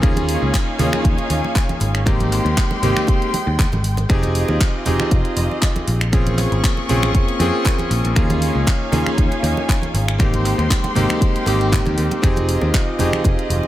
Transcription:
0.02 D#2 A#3 C#4 D#4 F4 G#4 C#5 F5 G#5, finger snap, kick, closed hi-hat
0.16 closed hi-hat, muted conga, high conga
0.29 open hi-hat
0.42 C#2
0.54 kick, clap, closed hi-hat, muted conga, high conga
0.78 D#2 A#3 C#4 F4 G#4, open hi-hat, muted conga, low conga
0.93 finger snap, high conga
1.04 D#2, kick, closed hi-hat
1.18 closed hi-hat, muted conga
1.30 D#2, open hi-hat, high conga
1.44 muted conga
1.55 kick, clap, closed hi-hat
1.69 closed hi-hat, high conga
1.80 G#1, open hi-hat, muted conga
1.95 finger snap, closed hi-hat
2.06 G#3 A#3 C4 D#4 G4 G5 C6, finger snap, kick, closed hi-hat, muted conga
2.20 closed hi-hat, high conga
2.32 clap, open hi-hat
2.45 D#2, closed hi-hat, muted conga
2.57 kick, clap, closed hi-hat, high conga
2.71 muted conga
2.82 G#1 A#3 C4 D#4 G4, open hi-hat, low conga
2.97 finger snap, closed hi-hat, high conga
3.07 kick, closed hi-hat, muted conga
3.22 closed hi-hat
3.33 open hi-hat, muted conga, high conga
3.47 D#2
3.59 kick, clap, closed hi-hat
3.72 G#1, closed hi-hat, muted conga, high conga
3.84 open hi-hat
3.97 closed hi-hat, muted conga
4.09 F1 C4 D#4 F4 G4 G#4 D#5, finger snap, kick, closed hi-hat
4.23 closed hi-hat, muted conga, high conga
4.35 open hi-hat
4.48 D#2, muted conga
4.60 kick, clap, closed hi-hat, high conga
4.86 F1 C4 D#4 G4 G#4, open hi-hat, muted conga, low conga
5.00 finger snap, high conga
5.11 F1, kick, closed hi-hat, muted conga
5.25 closed hi-hat
5.36 F1, open hi-hat, high conga
5.51 muted conga
5.62 kick, clap, closed hi-hat
5.76 closed hi-hat, muted conga, high conga
5.87 A#1, open hi-hat
6.01 finger snap, closed hi-hat
6.12 A#3 C4 C#4 F4 G#4 C#6, finger snap, kick, closed hi-hat, muted conga
6.27 closed hi-hat, high conga
6.38 clap, open hi-hat, muted conga
6.52 G#1, closed hi-hat
6.63 kick, clap, closed hi-hat, high conga
6.77 muted conga
6.89 A#1 C4 C#4 F4 G#4, open hi-hat, low conga
7.02 finger snap, closed hi-hat, muted conga, high conga
7.14 F1, kick, closed hi-hat
7.28 muted picked electric bass stroke, closed hi-hat
7.39 F2 C4 C#4 F4 G#4, open hi-hat, muted conga, high conga
7.65 kick, clap, closed hi-hat, muted conga
7.79 closed hi-hat, high conga
7.91 A#1, open hi-hat
8.04 A#1, closed hi-hat, muted conga
8.15 D#2 A#3 C#4 D#4 F4 G#4 C#5 F5 G#5, finger snap, kick, closed hi-hat
8.30 closed hi-hat, muted conga, high conga
8.42 open hi-hat
8.55 C#2
8.67 kick, clap, closed hi-hat, muted conga, high conga
8.92 D#2 A#3 C#4 F4 G#4, open hi-hat, muted conga, low conga
9.06 finger snap, high conga
9.18 D#2, kick, closed hi-hat
9.31 closed hi-hat, muted conga
9.43 D#2, open hi-hat, high conga
9.57 muted conga
9.69 kick, clap, closed hi-hat
9.82 closed hi-hat, high conga
9.94 G#1, open hi-hat, muted conga
10.08 finger snap, closed hi-hat
10.18 G#3 A#3 C4 D#4 G4 G5 C6, finger snap, kick, closed hi-hat, muted conga
10.33 closed hi-hat, high conga
10.45 clap, open hi-hat
10.58 D#2, closed hi-hat, muted conga
10.70 kick, clap, closed hi-hat, high conga
10.84 closed hi-hat, muted conga
10.95 G#1 A#3 C4 D#4 G4, open hi-hat, low conga
11.09 finger snap, closed hi-hat, high conga
11.21 kick, closed hi-hat, muted conga
11.35 muted picked electric bass stroke, closed hi-hat
11.46 G#1 A#3 C4 D#4 G4, open hi-hat, muted conga, high conga
11.61 closed hi-hat
11.72 kick, clap, closed hi-hat
11.86 D#2, closed hi-hat, muted conga, high conga
11.98 D#2, open hi-hat
12.11 closed hi-hat, muted conga
12.22 F1 C4 D#4 F4 G4 G#4 D#5, finger snap, kick, closed hi-hat
12.36 closed hi-hat, muted conga, high conga
12.49 open hi-hat
12.61 D#2, muted conga
12.74 kick, clap, closed hi-hat, high conga
12.99 F1 C4 D#4 G4 G#4, open hi-hat, muted conga, low conga
13.13 finger snap, high conga
13.24 F1, kick, closed hi-hat, muted conga
13.39 closed hi-hat
13.50 F1, open hi-hat, high conga
13.63 muted conga

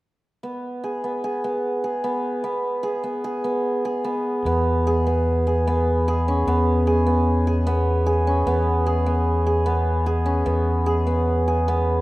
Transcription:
0.43 B3
0.84 G#4
1.04 B3
1.24 G#4
1.44 B3
1.84 G#4
2.04 B3
2.44 B3
2.83 G#4
3.04 B3
3.24 G#4
3.44 B3
3.85 G#4
4.04 B3
4.45 E2 B3
4.87 G#4
5.07 B3
5.47 G#4
5.67 B3
6.08 G#4
6.28 C#4
6.47 E2 B3
6.87 G#4
7.07 B3
7.47 G#4
7.67 B3
8.06 G#4
8.27 C#4
8.46 E2 B3
8.86 G#4
9.06 B3
9.47 G#4
9.66 B3
10.06 G#4
10.26 C#4
10.46 E2 B3
10.86 G#4
11.07 B3
11.48 G#4
11.68 B3

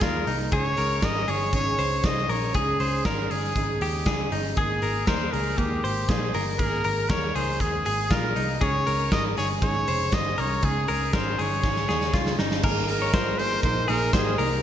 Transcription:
0.00 D#2 G#3 A#3 D#4 F4 G#4 A#4, kick, snare, closed hi-hat
0.27 C2 A#3 D#4 G#4, open hi-hat
0.52 C#2 C#3 G#3 C#4 D#4 G#4 C#5, kick, closed hi-hat
0.77 C#2 A#4, open hi-hat
1.02 G#1 C#4 D#4 G#4 A#4 D#5, kick, snare, closed hi-hat
1.28 G1 G#4 C#5, open hi-hat
1.53 G#1 C#3 G#3 C#4 D#4 G#4 C#5, kick, closed hi-hat
1.78 C#2 C5, open hi-hat
2.03 C2 G#3 C#4 D#4 G#4 D#5, kick, snare, closed hi-hat
2.28 A#1 C#4 D#4 G#4 A#4 C#5, open hi-hat
2.54 C#2 C#3 G#3 C#4 D#4 G#4, kick, closed hi-hat
2.80 C#2 C5, open hi-hat
3.05 G#1 G#3 C#4 D#4 G#4 A#4, kick, snare, closed hi-hat
3.31 G1 G#4, open hi-hat
3.56 G#1 C#3 G#3 C#4 D#4 G#4, kick, closed hi-hat
3.80 D#2 G4, open hi-hat
4.06 C#2 G#3 C#4 D#4 G#4, kick, snare, closed hi-hat
4.31 G1 C#4 D#4 G#4, open hi-hat
4.57 G#1 G#3 A#3 D#4 G#4, kick, closed hi-hat
4.82 G#1 A#4, open hi-hat
5.07 D#2 G#3 A#3 D#4 G#4 A#4 C5, kick, snare, closed hi-hat
5.32 C#2 G#4 A#4, open hi-hat
5.57 D#2 G#3 A#3 D#4 G4, kick, closed hi-hat
5.84 G#1 C5, open hi-hat
6.08 A#1 G#3 A#3 D#4 G#4, kick, snare, closed hi-hat
6.33 G1 A#3 D#4 G#4 A#4, open hi-hat
6.58 G#1 G#3 A#3 D#4 G#4 A#4, kick, closed hi-hat
6.84 G#1 A#4, open hi-hat
7.10 D#2 G#3 A#3 D#4 G#4 A#4 C#5, kick, snare, closed hi-hat
7.35 C#2 A#3 D#4 G#4 C5, open hi-hat
7.60 D#2 G#3 A#3 D#4 G#4, kick, closed hi-hat
7.86 G#1 G#4, open hi-hat
8.10 A#1 G#3 A#3 D#4 F4 G#4 A#4, kick, snare, closed hi-hat
8.36 C2 A#3 D#4 G#4, open hi-hat
8.60 C#2 C#3 G#3 C#4 D#4 G#4 C#5, kick, closed hi-hat
8.87 C#2 A#4, open hi-hat
9.12 G#1 G#3 D#4 G#4 A#4 D#5, kick, snare, closed hi-hat
9.37 G1 G#4 C#5, open hi-hat
9.62 G#1 C#3 G#3 C#4 D#4 G#4 C#5, kick, closed hi-hat
9.88 F1 C5, open hi-hat
10.12 G1 C#4 D#4 G#4 D#5, kick, snare, closed hi-hat
10.37 C2 C#4 D#4 G#4 A#4 C#5, open hi-hat
10.62 C#2 C#3 G#3 C#4 D#4 G#4, kick, closed hi-hat
10.88 C#2 A#4, open hi-hat
11.13 G#1 G#3 C#4 D#4 G#4 A#4 C5, kick, snare, closed hi-hat
11.38 G1 C#4 D#4 G#4 C#5, open hi-hat
11.63 G#1 C#3 G#3 C#4 D#4 G#4, kick, snare
11.76 snare
11.89 D#2 G#4, snare
12.01 snare
12.13 C#2 G#3 C#4 D#4 F4 G#4, kick, snare
12.26 snare
12.38 G1 C#4 D#4 G#4, snare
12.51 snare
12.63 G#1 G#3 A#3 D#4 G#4 A#4, kick, crash
12.88 A#3 D#4 G#4 A#4, open hi-hat
13.02 C#5
13.12 G#3 A#3 D#4 F4 G#4 C5, kick, snare, closed hi-hat
13.38 A#3 D#4 G#4 A#4 C5, open hi-hat
13.61 A#1 G#3 A#3 D#4 G#4 A#4 C5, kick, closed hi-hat
13.87 A#1 A#3 D#4 G#4 A#4, open hi-hat
14.11 G#1 G#3 A#3 D#4 G4 G#4 C5, kick, snare, closed hi-hat
14.16 G#4
14.37 C2 A#3 D#4 G#4 A#4, open hi-hat

